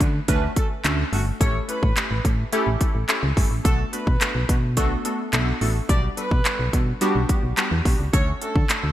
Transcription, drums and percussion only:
0, 0, Header, 1, 2, 480
1, 0, Start_track
1, 0, Key_signature, 2, "major"
1, 0, Tempo, 560748
1, 1204, Time_signature, 4, 2, 24, 8
1, 7636, End_track
2, 0, Start_track
2, 0, Title_t, "Drums"
2, 4, Note_on_c, 9, 36, 105
2, 5, Note_on_c, 9, 42, 73
2, 90, Note_off_c, 9, 36, 0
2, 90, Note_off_c, 9, 42, 0
2, 242, Note_on_c, 9, 42, 108
2, 244, Note_on_c, 9, 36, 94
2, 328, Note_off_c, 9, 42, 0
2, 330, Note_off_c, 9, 36, 0
2, 483, Note_on_c, 9, 42, 79
2, 484, Note_on_c, 9, 36, 96
2, 569, Note_off_c, 9, 36, 0
2, 569, Note_off_c, 9, 42, 0
2, 723, Note_on_c, 9, 42, 86
2, 725, Note_on_c, 9, 39, 121
2, 809, Note_off_c, 9, 42, 0
2, 810, Note_off_c, 9, 39, 0
2, 966, Note_on_c, 9, 46, 81
2, 1051, Note_off_c, 9, 46, 0
2, 1204, Note_on_c, 9, 36, 126
2, 1205, Note_on_c, 9, 42, 95
2, 1290, Note_off_c, 9, 36, 0
2, 1290, Note_off_c, 9, 42, 0
2, 1444, Note_on_c, 9, 42, 70
2, 1530, Note_off_c, 9, 42, 0
2, 1565, Note_on_c, 9, 36, 108
2, 1650, Note_off_c, 9, 36, 0
2, 1684, Note_on_c, 9, 39, 114
2, 1684, Note_on_c, 9, 42, 99
2, 1769, Note_off_c, 9, 42, 0
2, 1770, Note_off_c, 9, 39, 0
2, 1924, Note_on_c, 9, 36, 103
2, 1925, Note_on_c, 9, 42, 68
2, 2010, Note_off_c, 9, 36, 0
2, 2011, Note_off_c, 9, 42, 0
2, 2162, Note_on_c, 9, 42, 106
2, 2247, Note_off_c, 9, 42, 0
2, 2402, Note_on_c, 9, 42, 78
2, 2404, Note_on_c, 9, 36, 95
2, 2488, Note_off_c, 9, 42, 0
2, 2489, Note_off_c, 9, 36, 0
2, 2642, Note_on_c, 9, 42, 86
2, 2644, Note_on_c, 9, 39, 119
2, 2728, Note_off_c, 9, 42, 0
2, 2730, Note_off_c, 9, 39, 0
2, 2884, Note_on_c, 9, 36, 99
2, 2885, Note_on_c, 9, 46, 83
2, 2970, Note_off_c, 9, 36, 0
2, 2971, Note_off_c, 9, 46, 0
2, 3125, Note_on_c, 9, 36, 127
2, 3125, Note_on_c, 9, 42, 91
2, 3210, Note_off_c, 9, 36, 0
2, 3210, Note_off_c, 9, 42, 0
2, 3365, Note_on_c, 9, 42, 71
2, 3450, Note_off_c, 9, 42, 0
2, 3485, Note_on_c, 9, 36, 105
2, 3570, Note_off_c, 9, 36, 0
2, 3604, Note_on_c, 9, 39, 114
2, 3604, Note_on_c, 9, 42, 95
2, 3689, Note_off_c, 9, 42, 0
2, 3690, Note_off_c, 9, 39, 0
2, 3844, Note_on_c, 9, 36, 106
2, 3844, Note_on_c, 9, 42, 73
2, 3930, Note_off_c, 9, 36, 0
2, 3930, Note_off_c, 9, 42, 0
2, 4082, Note_on_c, 9, 42, 105
2, 4084, Note_on_c, 9, 36, 93
2, 4168, Note_off_c, 9, 42, 0
2, 4170, Note_off_c, 9, 36, 0
2, 4322, Note_on_c, 9, 42, 82
2, 4408, Note_off_c, 9, 42, 0
2, 4562, Note_on_c, 9, 42, 92
2, 4564, Note_on_c, 9, 39, 125
2, 4648, Note_off_c, 9, 42, 0
2, 4649, Note_off_c, 9, 39, 0
2, 4805, Note_on_c, 9, 46, 87
2, 4891, Note_off_c, 9, 46, 0
2, 5044, Note_on_c, 9, 36, 125
2, 5044, Note_on_c, 9, 42, 92
2, 5130, Note_off_c, 9, 36, 0
2, 5130, Note_off_c, 9, 42, 0
2, 5284, Note_on_c, 9, 42, 72
2, 5370, Note_off_c, 9, 42, 0
2, 5404, Note_on_c, 9, 36, 114
2, 5490, Note_off_c, 9, 36, 0
2, 5523, Note_on_c, 9, 42, 96
2, 5524, Note_on_c, 9, 39, 116
2, 5609, Note_off_c, 9, 39, 0
2, 5609, Note_off_c, 9, 42, 0
2, 5764, Note_on_c, 9, 36, 104
2, 5764, Note_on_c, 9, 42, 73
2, 5849, Note_off_c, 9, 36, 0
2, 5850, Note_off_c, 9, 42, 0
2, 6001, Note_on_c, 9, 42, 104
2, 6087, Note_off_c, 9, 42, 0
2, 6242, Note_on_c, 9, 42, 80
2, 6243, Note_on_c, 9, 36, 96
2, 6328, Note_off_c, 9, 42, 0
2, 6329, Note_off_c, 9, 36, 0
2, 6482, Note_on_c, 9, 42, 90
2, 6484, Note_on_c, 9, 39, 127
2, 6567, Note_off_c, 9, 42, 0
2, 6569, Note_off_c, 9, 39, 0
2, 6723, Note_on_c, 9, 36, 102
2, 6724, Note_on_c, 9, 46, 87
2, 6809, Note_off_c, 9, 36, 0
2, 6810, Note_off_c, 9, 46, 0
2, 6963, Note_on_c, 9, 42, 90
2, 6964, Note_on_c, 9, 36, 123
2, 7049, Note_off_c, 9, 36, 0
2, 7049, Note_off_c, 9, 42, 0
2, 7204, Note_on_c, 9, 42, 70
2, 7289, Note_off_c, 9, 42, 0
2, 7324, Note_on_c, 9, 36, 109
2, 7409, Note_off_c, 9, 36, 0
2, 7442, Note_on_c, 9, 42, 99
2, 7443, Note_on_c, 9, 39, 110
2, 7528, Note_off_c, 9, 42, 0
2, 7529, Note_off_c, 9, 39, 0
2, 7636, End_track
0, 0, End_of_file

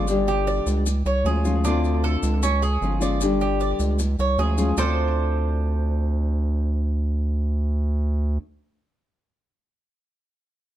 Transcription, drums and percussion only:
0, 0, Header, 1, 2, 480
1, 0, Start_track
1, 0, Key_signature, -1, "minor"
1, 0, Tempo, 391134
1, 101, Time_signature, 4, 2, 24, 8
1, 13205, End_track
2, 0, Start_track
2, 0, Title_t, "Drums"
2, 94, Note_on_c, 9, 70, 93
2, 217, Note_off_c, 9, 70, 0
2, 338, Note_on_c, 9, 70, 27
2, 461, Note_off_c, 9, 70, 0
2, 578, Note_on_c, 9, 70, 33
2, 701, Note_off_c, 9, 70, 0
2, 819, Note_on_c, 9, 70, 73
2, 942, Note_off_c, 9, 70, 0
2, 1058, Note_on_c, 9, 70, 106
2, 1181, Note_off_c, 9, 70, 0
2, 1297, Note_on_c, 9, 70, 33
2, 1420, Note_off_c, 9, 70, 0
2, 1540, Note_on_c, 9, 70, 32
2, 1663, Note_off_c, 9, 70, 0
2, 1777, Note_on_c, 9, 70, 78
2, 1900, Note_off_c, 9, 70, 0
2, 2018, Note_on_c, 9, 70, 93
2, 2141, Note_off_c, 9, 70, 0
2, 2262, Note_on_c, 9, 70, 28
2, 2385, Note_off_c, 9, 70, 0
2, 2500, Note_on_c, 9, 70, 32
2, 2623, Note_off_c, 9, 70, 0
2, 2736, Note_on_c, 9, 70, 77
2, 2859, Note_off_c, 9, 70, 0
2, 2979, Note_on_c, 9, 70, 99
2, 3102, Note_off_c, 9, 70, 0
2, 3219, Note_on_c, 9, 70, 32
2, 3342, Note_off_c, 9, 70, 0
2, 3462, Note_on_c, 9, 70, 30
2, 3585, Note_off_c, 9, 70, 0
2, 3699, Note_on_c, 9, 70, 78
2, 3821, Note_off_c, 9, 70, 0
2, 3937, Note_on_c, 9, 70, 91
2, 4059, Note_off_c, 9, 70, 0
2, 4179, Note_on_c, 9, 70, 29
2, 4302, Note_off_c, 9, 70, 0
2, 4420, Note_on_c, 9, 70, 32
2, 4543, Note_off_c, 9, 70, 0
2, 4657, Note_on_c, 9, 70, 77
2, 4780, Note_off_c, 9, 70, 0
2, 4897, Note_on_c, 9, 70, 97
2, 5020, Note_off_c, 9, 70, 0
2, 5140, Note_on_c, 9, 70, 31
2, 5262, Note_off_c, 9, 70, 0
2, 5379, Note_on_c, 9, 70, 31
2, 5502, Note_off_c, 9, 70, 0
2, 5618, Note_on_c, 9, 70, 75
2, 5740, Note_off_c, 9, 70, 0
2, 5858, Note_on_c, 9, 70, 101
2, 5981, Note_off_c, 9, 70, 0
2, 13205, End_track
0, 0, End_of_file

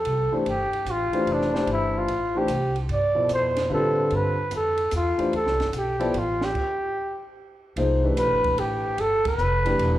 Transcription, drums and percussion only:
0, 0, Header, 1, 2, 480
1, 0, Start_track
1, 0, Tempo, 405405
1, 547, Time_signature, 3, 2, 24, 8
1, 11823, End_track
2, 0, Start_track
2, 0, Title_t, "Drums"
2, 58, Note_on_c, 9, 51, 53
2, 177, Note_off_c, 9, 51, 0
2, 545, Note_on_c, 9, 51, 48
2, 664, Note_off_c, 9, 51, 0
2, 866, Note_on_c, 9, 51, 32
2, 985, Note_off_c, 9, 51, 0
2, 1022, Note_on_c, 9, 44, 50
2, 1022, Note_on_c, 9, 51, 48
2, 1141, Note_off_c, 9, 44, 0
2, 1141, Note_off_c, 9, 51, 0
2, 1340, Note_on_c, 9, 51, 38
2, 1459, Note_off_c, 9, 51, 0
2, 1505, Note_on_c, 9, 51, 47
2, 1624, Note_off_c, 9, 51, 0
2, 1672, Note_on_c, 9, 38, 22
2, 1791, Note_off_c, 9, 38, 0
2, 1835, Note_on_c, 9, 38, 37
2, 1953, Note_off_c, 9, 38, 0
2, 1981, Note_on_c, 9, 51, 42
2, 2099, Note_off_c, 9, 51, 0
2, 2467, Note_on_c, 9, 51, 43
2, 2585, Note_off_c, 9, 51, 0
2, 2938, Note_on_c, 9, 44, 47
2, 2938, Note_on_c, 9, 51, 59
2, 3057, Note_off_c, 9, 44, 0
2, 3057, Note_off_c, 9, 51, 0
2, 3264, Note_on_c, 9, 51, 35
2, 3382, Note_off_c, 9, 51, 0
2, 3422, Note_on_c, 9, 51, 42
2, 3541, Note_off_c, 9, 51, 0
2, 3897, Note_on_c, 9, 44, 53
2, 3897, Note_on_c, 9, 51, 49
2, 4016, Note_off_c, 9, 44, 0
2, 4016, Note_off_c, 9, 51, 0
2, 4221, Note_on_c, 9, 51, 56
2, 4227, Note_on_c, 9, 38, 33
2, 4339, Note_off_c, 9, 51, 0
2, 4345, Note_off_c, 9, 38, 0
2, 4860, Note_on_c, 9, 51, 38
2, 4978, Note_off_c, 9, 51, 0
2, 5340, Note_on_c, 9, 44, 51
2, 5340, Note_on_c, 9, 51, 49
2, 5458, Note_off_c, 9, 44, 0
2, 5458, Note_off_c, 9, 51, 0
2, 5654, Note_on_c, 9, 51, 41
2, 5772, Note_off_c, 9, 51, 0
2, 5816, Note_on_c, 9, 44, 56
2, 5816, Note_on_c, 9, 51, 57
2, 5934, Note_off_c, 9, 44, 0
2, 5934, Note_off_c, 9, 51, 0
2, 6141, Note_on_c, 9, 51, 38
2, 6260, Note_off_c, 9, 51, 0
2, 6311, Note_on_c, 9, 51, 44
2, 6429, Note_off_c, 9, 51, 0
2, 6471, Note_on_c, 9, 38, 27
2, 6589, Note_off_c, 9, 38, 0
2, 6628, Note_on_c, 9, 51, 33
2, 6634, Note_on_c, 9, 38, 36
2, 6746, Note_off_c, 9, 51, 0
2, 6753, Note_off_c, 9, 38, 0
2, 6785, Note_on_c, 9, 44, 48
2, 6785, Note_on_c, 9, 51, 53
2, 6904, Note_off_c, 9, 44, 0
2, 6904, Note_off_c, 9, 51, 0
2, 7110, Note_on_c, 9, 51, 39
2, 7228, Note_off_c, 9, 51, 0
2, 7271, Note_on_c, 9, 51, 47
2, 7389, Note_off_c, 9, 51, 0
2, 7592, Note_on_c, 9, 38, 43
2, 7711, Note_off_c, 9, 38, 0
2, 7755, Note_on_c, 9, 49, 46
2, 7756, Note_on_c, 9, 36, 56
2, 7873, Note_off_c, 9, 49, 0
2, 7875, Note_off_c, 9, 36, 0
2, 9194, Note_on_c, 9, 51, 50
2, 9313, Note_off_c, 9, 51, 0
2, 9673, Note_on_c, 9, 44, 51
2, 9673, Note_on_c, 9, 51, 56
2, 9791, Note_off_c, 9, 44, 0
2, 9791, Note_off_c, 9, 51, 0
2, 9996, Note_on_c, 9, 51, 46
2, 9998, Note_on_c, 9, 36, 62
2, 10115, Note_off_c, 9, 51, 0
2, 10117, Note_off_c, 9, 36, 0
2, 10157, Note_on_c, 9, 51, 55
2, 10275, Note_off_c, 9, 51, 0
2, 10632, Note_on_c, 9, 51, 52
2, 10750, Note_off_c, 9, 51, 0
2, 10953, Note_on_c, 9, 51, 65
2, 10956, Note_on_c, 9, 36, 66
2, 11071, Note_off_c, 9, 51, 0
2, 11075, Note_off_c, 9, 36, 0
2, 11114, Note_on_c, 9, 44, 48
2, 11232, Note_off_c, 9, 44, 0
2, 11433, Note_on_c, 9, 51, 45
2, 11552, Note_off_c, 9, 51, 0
2, 11595, Note_on_c, 9, 51, 58
2, 11713, Note_off_c, 9, 51, 0
2, 11823, End_track
0, 0, End_of_file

